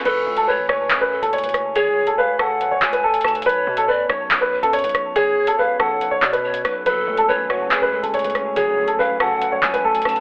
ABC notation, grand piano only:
X:1
M:4/4
L:1/16
Q:1/4=141
K:F#m
V:1 name="Grand piano"
B3 A B2 c3 B2 A c4 | G3 A B2 A3 c2 B A4 | B3 A B2 c3 B2 A c4 | G3 A B2 A3 c2 B4- B |
B3 A B2 c3 B2 A c4 | G3 A B2 A3 c2 B A4 |]